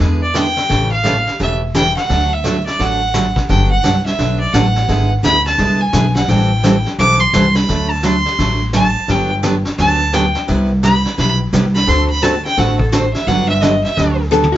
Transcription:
0.00 upright bass E2, steel-string acoustic guitar D3 G#3 B3 E4 G#4, brush sweep
0.23 fiddle D5
0.34 steel-string acoustic guitar D3 G#3 B3 E4 G#4, fiddle G5, snare, hi-hat pedal
0.57 snare
0.69 upright bass A1, steel-string acoustic guitar C#3 E3 A3 C#4 G4, brush sweep, snare
0.92 fiddle F5
1.03 steel-string acoustic guitar C#3 E3 A3 C#4 G4, snare, hi-hat pedal
1.27 snare
1.39 upright bass E1, steel-string acoustic guitar C#3 E3 A3 C#4 G4, fiddle E5, brush sweep, snare
1.74 steel-string acoustic guitar C#3 E3 A3 C#4 G4, fiddle G5, snare, hi-hat pedal
1.97 fiddle F#5, snare
2.09 upright bass D2, steel-string acoustic guitar D3 F#3 A3 D4 F#4, brush sweep, snare
2.33 fiddle E5
2.44 steel-string acoustic guitar D3 F#3 A3 D4 F#4, snare, hi-hat pedal
2.66 fiddle D5, snare
2.79 upright bass A1, steel-string acoustic guitar D3 F#3 A3 D4 F#4, fiddle F#5, brush sweep, snare
3.14 steel-string acoustic guitar D3 F#3 A3 D4 F#4, snare, hi-hat pedal
3.36 kick, snare
3.49 upright bass G1, steel-string acoustic guitar D3 F#3 B3 D4 G4, fiddle G5, brush sweep, snare
3.71 fiddle F#5
3.83 upright bass C2, steel-string acoustic guitar D3 F#3 B3 D4 G4, snare, hi-hat pedal
4.06 fiddle E5, snare
4.18 upright bass B1, steel-string acoustic guitar D3 F#3 B3 D4 G4, brush sweep, snare
4.40 fiddle D5
4.53 upright bass A1, steel-string acoustic guitar D3 F#3 B3 D4 G4, fiddle F#5, snare, hi-hat pedal
4.76 snare
4.88 upright bass G#1, steel-string acoustic guitar D3 G#3 B3 E4 G#4, brush sweep, snare
5.23 upright bass D2, steel-string acoustic guitar D3 G#3 B3 E4 G#4, fiddle B5, snare, hi-hat pedal
5.46 fiddle A5, snare
5.58 upright bass C2, steel-string acoustic guitar D3 G#3 B3 E4 G#4, brush sweep, snare
5.81 fiddle G#5
5.93 upright bass B1, steel-string acoustic guitar D3 G#3 B3 E4 G#4, snare, hi-hat pedal
6.15 fiddle F#5, snare
6.28 upright bass A1, steel-string acoustic guitar E3 G3 C4 E4 A4, fiddle G5, brush sweep, snare
6.63 steel-string acoustic guitar E3 G3 C4 E4 A4, snare, hi-hat pedal
6.86 snare
6.98 upright bass B1, steel-string acoustic guitar E3 G3 C4 E4 A4, fiddle D6, brush sweep, snare
7.20 fiddle C6
7.33 upright bass C2, steel-string acoustic guitar E3 G3 C4 E4 A4, snare, hi-hat pedal
7.55 fiddle B5, snare
7.68 upright bass D2, steel-string acoustic guitar D3 F#3 A3 D4 F#4, brush sweep, snare
7.91 fiddle A5
8.03 steel-string acoustic guitar D3 F#3 A3 D4 F#4, fiddle C6, snare, hi-hat pedal
8.25 snare
8.38 upright bass A1, steel-string acoustic guitar D3 F#3 A3 D4 F#4, brush sweep, snare
8.73 steel-string acoustic guitar D3 F#3 A3 D4 F#4, fiddle A5, snare, hi-hat pedal
9.08 upright bass G1, steel-string acoustic guitar D3 F#3 B3 D4 G4, fiddle G5, brush sweep, snare
9.43 steel-string acoustic guitar D3 F#3 B3 D4 G4, snare, hi-hat pedal
9.65 snare
9.78 upright bass D2, steel-string acoustic guitar D3 F#3 B3 D4 G4, fiddle A5, brush sweep, snare
10.13 steel-string acoustic guitar D3 F#3 B3 D4 G4, fiddle G5, snare, hi-hat pedal
10.35 snare
10.48 upright bass C2, steel-string acoustic guitar C3 G3 B3 E4 G4, brush sweep, snare
10.83 steel-string acoustic guitar C3 G3 B3 E4 G4, fiddle B5, snare, hi-hat pedal
11.05 snare
11.17 upright bass B1, steel-string acoustic guitar C3 G3 B3 E4 G4, fiddle B5, brush sweep, snare
11.53 upright bass C2, steel-string acoustic guitar C3 G3 B3 E4 G4, snare, hi-hat pedal
11.75 fiddle B5, snare
11.87 upright bass D2, steel-string acoustic guitar D3 A3 C4 F#4 A4, fiddle C6, brush sweep, snare
12.10 fiddle B5
12.22 steel-string acoustic guitar D3 A3 C4 F#4 A4, fiddle A5, snare, hi-hat pedal
12.45 fiddle G5, snare
12.57 upright bass A1, steel-string acoustic guitar D3 A3 C4 F#4 A4, fiddle F#5, brush sweep, snare
12.79 fiddle A4, kick
12.92 steel-string acoustic guitar D3 A3 C4 F#4 A4, fiddle C5, snare, hi-hat pedal
13.14 fiddle E5, snare
13.27 upright bass G1, steel-string acoustic guitar D3 F#3 B3 D4 G4, fiddle F#5, brush sweep, snare
13.49 fiddle E5
13.62 steel-string acoustic guitar D3 F#3 B3 D4 G4, fiddle D#5, snare, hi-hat pedal
13.84 fiddle E5, snare
13.96 upright bass D2, steel-string acoustic guitar D3 F#3 B3 D4 G4, brush sweep, snare
14.31 steel-string acoustic guitar D3 F#3 B3 D4 G4, hollow-body jazz guitar A4, hi-hat pedal, high tom
14.43 high tom
14.52 hollow-body jazz guitar F#4

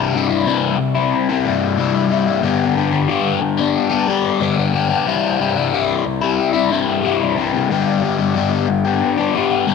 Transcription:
Already playing: overdriven electric guitar C2 G2 C3 G3 E4
0.14 overdriven electric guitar G2 C3 G3 E4
0.29 overdriven electric guitar C3 G3 E4
0.46 overdriven electric guitar C2 G2 C3 G3 E4
0.78 muted overdriven electric guitar stroke
0.95 overdriven electric guitar C3 G3 E4
1.29 overdriven electric guitar C3 G3 E4
1.45 overdriven electric guitar G2 C3 G3 E4
1.77 overdriven electric guitar C2 G2 C3 G3 E4
1.94 overdriven electric guitar C3 G3 E4
2.09 overdriven electric guitar G2 C3 G3 E4
2.27 overdriven electric guitar C3 G3 E4
2.42 overdriven electric guitar G2 D3 G3 B3 D4 G4
2.75 overdriven electric guitar G3 B3 D4 G4
2.91 overdriven electric guitar G3 B3 D4 G4
3.08 overdriven electric guitar G2 D3 G3 B3 D4 G4
3.42 muted overdriven electric guitar stroke
3.58 overdriven electric guitar G3 B3 D4 G4
3.90 overdriven electric guitar G3 B3 D4 G4
4.07 overdriven electric guitar G3 B3 D4 G4
4.40 overdriven electric guitar G2 D3 G3 B3 D4 G4
4.57 overdriven electric guitar G3 B3 D4 G4
4.73 overdriven electric guitar G3 B3 D4 G4
4.89 overdriven electric guitar G3 B3 D4 G4
5.06 overdriven electric guitar C2 G2 C3 G3 E4
5.39 overdriven electric guitar G2 C3 G3 E4
5.56 overdriven electric guitar C3 G3 E4
5.72 overdriven electric guitar C2 G2 C3 G3 E4
6.05 muted overdriven electric guitar stroke
6.22 overdriven electric guitar C3 G3 E4
6.53 overdriven electric guitar C3 G3 E4
6.70 overdriven electric guitar G2 C3 G3 E4
7.03 overdriven electric guitar C2 G2 C3 G3 E4
7.20 overdriven electric guitar C3 G3 E4
7.37 overdriven electric guitar G2 C3 G3 E4
7.53 overdriven electric guitar C3 G3 E4
7.70 overdriven electric guitar G2 D3 G3 B3 D4 G4
8.02 overdriven electric guitar G3 B3 D4 G4
8.18 overdriven electric guitar G3 B3 D4 G4
8.35 overdriven electric guitar G2 D3 G3 B3 D4 G4
8.69 muted overdriven electric guitar stroke
8.85 overdriven electric guitar G3 B3 D4 G4
9.18 overdriven electric guitar G3 B3 D4 G4
9.35 overdriven electric guitar G3 B3 D4 G4
9.67 overdriven electric guitar G2 D3 G3 B3 D4 G4

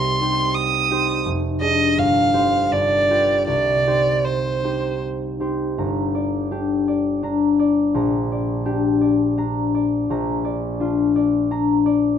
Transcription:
Already playing: harp C2 D#4 G4 C5, violin C6
0.21 harp D#4 G4 C5
0.54 violin D#6
0.91 harp D#4 G4 C5
1.26 harp F1
1.61 harp D4 G#4 D5, violin D#5
1.97 harp G1, violin F5
2.33 harp D#4 G4 C5
2.72 harp G1, violin D5
3.10 harp F4 G4 B4
3.47 harp C2, violin D5
3.86 harp D#4 G4 C5
4.25 violin C5
4.64 harp D#4 G4 C5
5.40 harp D#4 G4 C5
5.78 harp G1 A#5
6.15 harp D5
6.51 harp D4 G4
6.88 harp D5
7.23 harp D4 A#5
7.59 harp D5
7.94 harp A#1 A#5
8.32 harp D5
8.65 harp D4 G4
9.01 harp D5
9.38 harp D4 A#5
9.74 harp D5
10.10 harp A#1 A#5
10.45 harp D5
10.80 harp D4 F4
11.16 harp D5
11.51 harp D4 A#5
11.86 harp D5

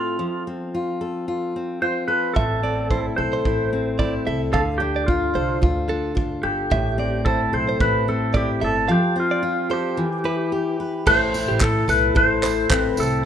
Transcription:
Already playing: steel-string acoustic guitar A2 C4 A4, electric slide guitar F4
0.19 steel-string acoustic guitar F3
0.47 steel-string acoustic guitar C4
0.75 steel-string acoustic guitar F4
1.01 steel-string acoustic guitar A4
1.28 steel-string acoustic guitar F4
1.56 steel-string acoustic guitar C4
1.82 steel-string acoustic guitar F4, electric slide guitar C5
2.08 steel-string acoustic guitar A4, electric slide guitar B4
2.34 upright bass A1, steel-string acoustic guitar A2, electric slide guitar A4, clean electric guitar E5, kick
2.63 steel-string acoustic guitar C4, clean electric guitar D5
2.91 steel-string acoustic guitar E4, clean electric guitar C5, kick
3.16 upright bass B1, steel-string acoustic guitar A4, electric slide guitar C5
3.33 clean electric guitar C5
3.45 upright bass A1, steel-string acoustic guitar E4, kick
3.73 steel-string acoustic guitar C4
3.99 steel-string acoustic guitar E4, clean electric guitar D5, kick
4.27 upright bass C2, steel-string acoustic guitar A4, clean electric guitar E5
4.53 upright bass D2, steel-string acoustic guitar D3, electric slide guitar A4, clean electric guitar F5, kick
4.78 steel-string acoustic guitar D4, electric slide guitar G4
4.96 clean electric guitar D5
5.06 electric slide guitar F4, steel-string acoustic guitar F4, kick
5.35 upright bass C2, steel-string acoustic guitar A4, clean electric guitar C5
5.62 upright bass D2, steel-string acoustic guitar F4, kick
5.89 steel-string acoustic guitar D4, clean electric guitar A4
6.15 steel-string acoustic guitar F4, kick
6.43 upright bass G1, electric slide guitar G4, steel-string acoustic guitar A4
6.71 upright bass A1, steel-string acoustic guitar A2, clean electric guitar E5, kick
6.98 steel-string acoustic guitar C4, clean electric guitar D5
7.25 steel-string acoustic guitar E4, electric slide guitar A4, clean electric guitar C5, kick
7.53 upright bass B1, steel-string acoustic guitar A4, electric slide guitar C5
7.69 clean electric guitar C5
7.80 upright bass A1, steel-string acoustic guitar E4, electric slide guitar B4, kick
8.08 steel-string acoustic guitar C4, electric slide guitar A4
8.34 steel-string acoustic guitar E4, electric slide guitar G4, clean electric guitar D5, kick
8.61 upright bass G1, steel-string acoustic guitar A4, electric slide guitar A4, clean electric guitar E5
8.88 steel-string acoustic guitar F3, electric slide guitar G4, clean electric guitar F5
9.16 steel-string acoustic guitar C4
9.20 electric slide guitar F4
9.31 clean electric guitar D5
9.43 steel-string acoustic guitar F4
9.70 electric slide guitar G4, steel-string acoustic guitar A4, clean electric guitar C5
9.97 steel-string acoustic guitar E3
10.24 steel-string acoustic guitar E4, clean electric guitar B4
10.52 steel-string acoustic guitar G4
10.80 steel-string acoustic guitar B4
11.06 upright bass A1, steel-string acoustic guitar A2 A4, clean electric guitar A4, electric slide guitar C5, kick, crash
11.34 steel-string acoustic guitar E4, tambourine
11.48 upright bass A1, clean electric guitar G4
11.60 steel-string acoustic guitar A4, electric slide guitar A4, kick, clap
11.88 upright bass B1, steel-string acoustic guitar E4, clean electric guitar A4, electric slide guitar B4, tambourine
12.15 upright bass A1, steel-string acoustic guitar A4, electric slide guitar C5, kick
12.43 steel-string acoustic guitar E4, clean electric guitar C5, clap, tambourine
12.70 upright bass A1, steel-string acoustic guitar C4, electric slide guitar B4, kick, clap
12.97 upright bass C2, steel-string acoustic guitar E4, electric slide guitar A4, tambourine

